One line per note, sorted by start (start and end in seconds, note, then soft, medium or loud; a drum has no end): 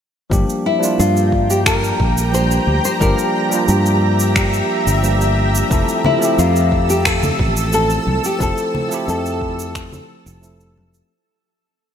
0.30 0.42 G1 medium
0.30 0.77 F3 medium
0.30 0.78 G3 medium
0.30 0.78 A#3 medium
0.30 0.78 D4 medium
0.30 5.67 G4 medium
0.30 0.79 G4 loud
0.30 2.99 G5 medium
0.30 5.67 A#5 medium
0.30 kick loud
0.30 cabasa medium
0.49 cabasa soft
0.66 1.00 E4 medium
0.79 2.28 F3 medium
0.79 2.29 G3 medium
0.79 2.30 A#3 medium
0.83 2.30 D4 medium
0.83 2.31 F4 loud
0.83 cabasa medium
0.99 1.91 G2 medium
0.99 1.52 F4 medium
0.99 cabasa medium
1.17 cabasa soft
1.32 kick medium
1.50 1.66 G4 medium
1.50 cabasa medium
1.66 2.34 A#4 medium
1.66 finger snap medium
1.66 kick loud
1.66 cabasa medium
1.84 cabasa soft
2.00 2.58 A#1 medium
2.00 kick medium
2.18 cabasa medium
2.32 2.96 F3 medium
2.32 2.97 G3 medium
2.32 2.97 A#3 medium
2.32 2.98 D4 medium
2.32 2.98 G4 medium
2.32 2.84 C5 loud
2.32 cabasa medium
2.51 cabasa soft
2.67 2.78 D2 medium
2.85 2.90 C5 medium
2.85 cabasa medium
3.00 3.12 G1 medium
3.00 3.47 F3 medium
3.00 3.48 G3 medium
3.00 3.48 A#3 medium
3.00 3.48 D4 medium
3.00 3.49 G4 loud
3.00 3.69 A#4 medium
3.00 5.68 E5 medium
3.00 kick loud
3.00 cabasa medium
3.19 cabasa soft
3.49 4.98 F3 medium
3.49 4.99 G3 medium
3.49 5.00 A#3 medium
3.49 cabasa medium
3.54 5.00 D4 medium
3.54 5.01 F4 loud
3.68 4.60 G2 medium
3.68 4.66 G4 medium
3.68 cabasa medium
3.86 cabasa soft
4.20 cabasa medium
4.36 finger snap medium
4.36 kick loud
4.36 cabasa medium
4.54 cabasa soft
4.87 5.61 G1 medium
4.87 cabasa medium
5.02 5.66 F3 medium
5.02 5.67 G3 medium
5.02 5.67 A#3 medium
5.02 5.68 D4 medium
5.02 5.68 G4 medium
5.02 cabasa medium
5.21 cabasa soft
5.55 cabasa medium
5.70 5.82 F1 medium
5.70 6.17 F3 loud
5.70 6.17 A3 medium
5.70 6.18 C4 medium
5.70 6.18 E4 medium
5.70 11.07 A4 medium
5.70 6.18 A4 loud
5.70 11.07 E6 medium
5.70 kick loud
5.70 cabasa medium
5.88 cabasa soft
6.04 6.40 E4 medium
6.04 low conga medium
6.19 7.68 F3 medium
6.19 7.69 A3 medium
6.19 7.69 C4 medium
6.19 cabasa medium
6.23 7.71 G4 loud
6.23 7.70 E5 medium
6.38 7.30 F2 medium
6.38 6.91 F4 medium
6.38 cabasa medium
6.56 cabasa soft
6.72 kick medium
6.90 7.07 G4 medium
6.90 cabasa medium
7.05 7.73 A4 loud
7.05 finger snap medium
7.05 kick loud
7.05 cabasa medium
7.23 low conga medium
7.23 cabasa soft
7.39 7.97 A1 loud
7.39 kick loud
7.57 cabasa medium
7.72 8.36 F3 medium
7.72 8.36 A3 medium
7.72 8.37 C4 medium
7.72 8.37 E4 medium
7.72 8.25 A4 loud
7.72 8.37 A4 medium
7.72 cabasa medium
7.90 cabasa soft
8.07 8.18 C2 medium
8.07 high conga medium
8.24 8.42 G4 medium
8.24 cabasa medium
8.39 8.52 F1 medium
8.39 8.86 F3 medium
8.39 8.87 A3 medium
8.39 8.87 C4 medium
8.39 8.87 E4 medium
8.39 8.88 A4 loud
8.39 9.08 A4 loud
8.39 kick loud
8.39 cabasa medium
8.58 cabasa soft
8.75 low conga medium
8.88 10.37 F3 medium
8.88 10.38 A3 medium
8.88 10.39 C4 medium
8.88 cabasa medium
8.93 10.40 E4 medium
8.93 10.40 G4 loud
9.08 10.00 F2 loud
9.08 10.06 A4 medium
9.08 cabasa medium
9.26 cabasa soft
9.41 kick medium
9.59 cabasa medium
9.75 finger snap medium
9.75 kick loud
9.75 cabasa medium
9.92 low conga medium
9.92 cabasa soft
10.26 11.01 F1 medium
10.26 cabasa medium
10.41 11.05 F3 medium
10.41 11.06 A3 medium
10.41 11.06 C4 medium
10.41 11.07 E4 medium
10.41 11.07 A4 medium
10.41 cabasa medium
10.61 cabasa soft
10.78 high conga medium
10.94 cabasa medium